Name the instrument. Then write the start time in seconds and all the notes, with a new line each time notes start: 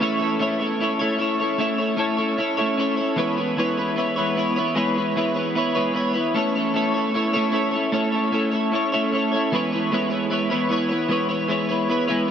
clean electric guitar
Already playing: E3
0.00 A3 C#4 E4 A4 C#5
0.20 E4 A4 C#5
0.39 A3 C#4 E4 A4 C#5
0.60 E4 A4 C#5
0.80 C#4 E4 A4 C#5
0.99 A3 C#4 E4 A4 C#5
1.19 C#4 E4 A4 C#5
1.40 E4 A4 C#5
1.58 A3 C#4 E4 A4 C#5
1.78 E4 A4 C#5
1.97 A3 C#4 E4 A4 C#5
2.17 E4 A4 C#5
2.38 C#4 E4 A4 C#5
2.57 A3 C#4 E4 A4 C#5
2.77 C#4 E4 A4 C#5
2.97 E4 A4 C#5
3.16 E3 G#3 B3 E4 B4 C#5
3.37 B3 E4 B4 C#5
3.57 E3 G#3 B3 E4 B4 C#5
3.77 B3 E4 B4 C#5
3.96 B3 E4 B4 C#5
4.16 E3 G#3 B3 E4 B4 C#5
4.36 B3 E4 B4 C#5
4.56 B3 E4 B4 C#5
4.75 E3 G#3 B3 E4 B4 C#5
4.96 B3 E4 B4 C#5
5.16 E3 G#3 B3 E4 B4 C#5
5.34 E4 B4 C#5
5.39 B3
5.55 B3 E4 B4 C#5
5.75 E3 G#3 B3 E4 B4 C#5
5.94 B3 E4 B4 C#5
6.13 B3 E4 B4 C#5
6.34 A3 C#4 E4 A4
6.38 C#5
6.55 E4 A4 C#5
6.74 A3 C#4 E4 A4 C#5
6.94 E4 A4 C#5
7.14 C#4 E4 A4 C#5
7.33 A3 C#4 E4 A4 C#5
7.52 C#4 E4 A4 C#5
7.71 A4 C#5
7.75 E4
7.92 A3 C#4 E4 A4 C#5
8.12 E4 A4 C#5
8.32 A3 C#4 E4 A4 C#5
8.52 E4 A4 C#5
8.72 C#4 E4 A4 C#5
8.92 A3 C#4 E4 A4 C#5
9.12 C#4 E4 A4 C#5
9.32 E4 A4 C#5
9.52 E3 G#3 B3 E4 B4 C#5
9.72 B3 E4 B4 C#5
9.92 E3 G#3 B3 E4 B4 C#5
10.10 B3 E4 B4 C#5
10.30 B3 E4 B4 C#5
10.50 E3 G#3 B3 E4 B4 C#5
10.69 B3 E4 B4 C#5
10.89 E4 B4 C#5
10.93 B3
11.08 E3 G#3 B3 E4 B4 C#5
11.29 B3 E4 B4 C#5
11.48 E3 G#3 B3 E4 B4 C#5
11.69 B3 E4 B4 C#5
11.88 B3 E4 B4 C#5
12.08 E3 G#3 B3 E4 B4 C#5